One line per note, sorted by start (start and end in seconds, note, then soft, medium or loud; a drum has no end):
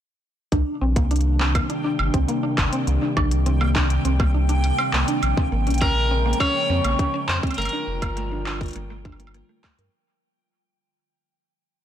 0.52 0.63 C2 loud
0.52 5.19 C3 medium
0.52 5.19 D#3 medium
0.52 5.19 G3 medium
0.52 9.89 A#3 medium
0.52 0.66 D4 loud
0.52 2.85 D4 medium
0.52 9.94 G5 medium
0.52 kick loud
0.52 closed hi-hat medium
0.81 0.98 A#1 loud
0.81 0.92 C4 loud
0.96 1.63 C2 medium
0.96 1.07 A#3 loud
0.96 kick loud
0.96 closed hi-hat medium
1.11 1.22 D4 loud
1.11 closed hi-hat medium
1.16 closed hi-hat soft
1.21 closed hi-hat soft
1.40 1.54 C4 loud
1.40 clap loud
1.55 1.69 A#3 medium
1.55 kick loud
1.55 closed hi-hat medium
1.55 high woodblock medium
1.70 1.76 D4 medium
1.70 closed hi-hat medium
1.84 1.98 D4 loud
1.99 2.10 G1 medium
1.99 high woodblock medium
2.14 2.25 C2 medium
2.14 2.25 C4 loud
2.14 kick loud
2.14 closed hi-hat medium
2.29 2.39 A#3 loud
2.29 closed hi-hat medium
2.43 2.54 D4 loud
2.58 2.69 G1 medium
2.58 kick loud
2.58 clap loud
2.58 high woodblock medium
2.73 2.87 C4 loud
2.73 closed hi-hat medium
2.87 2.98 C2 loud
2.87 3.01 A#3 medium
2.87 5.20 C4 medium
2.87 closed hi-hat medium
3.02 3.08 D4 medium
3.17 3.33 A#1 loud
3.17 3.31 D4 loud
3.17 kick loud
3.17 high woodblock medium
3.31 3.99 C2 medium
3.31 closed hi-hat medium
3.46 3.57 C4 loud
3.46 closed hi-hat medium
3.61 3.72 A#3 loud
3.61 high woodblock medium
3.76 3.86 D4 loud
3.76 kick loud
3.76 clap loud
3.90 closed hi-hat medium
4.05 4.72 C2 loud
4.05 4.19 C4 loud
4.05 closed hi-hat medium
4.20 4.34 A#3 medium
4.20 kick loud
4.20 high woodblock medium
4.34 4.41 D4 medium
4.49 4.63 D4 loud
4.49 closed hi-hat medium
4.64 closed hi-hat medium
4.79 4.89 C4 loud
4.79 high woodblock medium
4.93 5.04 C2 medium
4.93 5.04 A#3 loud
4.93 clap loud
5.08 5.19 D4 loud
5.08 closed hi-hat medium
5.23 5.33 A#1 loud
5.23 7.56 C#3 medium
5.23 7.56 F3 medium
5.23 7.56 G#3 medium
5.23 7.56 C#4 medium
5.23 closed hi-hat medium
5.23 high woodblock soft
5.37 5.51 C4 loud
5.37 kick loud
5.52 5.68 G#1 loud
5.52 5.66 A#3 medium
5.67 6.34 A#1 medium
5.67 5.73 C#4 medium
5.67 closed hi-hat soft
5.70 closed hi-hat soft
5.74 closed hi-hat soft
5.78 5.96 C#4 loud
5.78 kick loud
5.78 closed hi-hat medium
5.82 6.40 A#4 medium
5.82 closed hi-hat medium
5.82 high woodblock medium
6.11 6.22 C4 loud
6.26 6.36 A#3 loud
6.33 closed hi-hat medium
6.40 6.51 C#4 loud
6.40 7.28 C#5 loud
6.40 kick loud
6.40 closed hi-hat medium
6.40 high woodblock medium
6.70 6.81 F2 medium
6.70 6.84 C4 loud
6.84 6.95 A#1 medium
6.84 6.98 A#3 medium
6.84 closed hi-hat medium
6.84 high woodblock soft
6.99 7.06 C#4 medium
6.99 kick loud
6.99 closed hi-hat medium
7.14 7.28 C#4 loud
7.29 7.39 F2 medium
7.29 7.37 C5 loud
7.29 clap loud
7.43 7.54 C4 loud
7.43 kick loud
7.43 closed hi-hat soft
7.43 high woodblock soft
7.47 closed hi-hat soft
7.51 closed hi-hat soft
7.51 high woodblock soft
7.54 closed hi-hat soft
7.58 7.69 G1 loud
7.58 9.91 D3 medium
7.58 9.91 F3 medium
7.58 9.91 G3 medium
7.58 7.69 A3 loud
7.58 9.91 F4 medium
7.58 9.31 A#4 medium
7.58 closed hi-hat soft
7.58 high woodblock soft
7.62 closed hi-hat soft
7.65 closed hi-hat medium
7.65 high woodblock soft
7.69 7.83 D4 loud
7.69 closed hi-hat medium
7.87 8.04 F1 medium
8.02 8.69 G1 medium
8.02 8.16 A#3 loud
8.02 kick loud
8.02 closed hi-hat medium
8.02 high woodblock medium
8.17 8.31 A3 medium
8.17 closed hi-hat medium
8.32 8.38 D4 medium
8.46 8.60 D4 loud
8.46 clap loud
8.46 high woodblock soft
8.49 high woodblock soft
8.51 high woodblock soft
8.54 high woodblock soft
8.56 high woodblock soft
8.58 kick loud
8.58 closed hi-hat soft
8.58 high woodblock soft
8.63 closed hi-hat soft
8.66 closed hi-hat soft
8.68 closed hi-hat soft
8.71 closed hi-hat soft
8.73 9.43 G1 loud
8.73 closed hi-hat medium
8.76 8.86 A#3 loud
8.76 closed hi-hat medium
8.90 9.01 A3 loud
9.05 9.19 D4 medium
9.05 kick loud
9.05 high woodblock soft
9.12 high woodblock soft
9.20 9.30 A#3 medium
9.20 closed hi-hat medium
9.27 high woodblock soft
9.34 9.45 A#3 loud
9.34 closed hi-hat medium
9.49 9.60 A3 medium
9.64 9.70 A3 medium
9.64 kick loud
9.64 clap loud
9.64 high woodblock medium
9.79 9.89 G2 medium
9.79 9.89 A#4 medium
9.79 closed hi-hat medium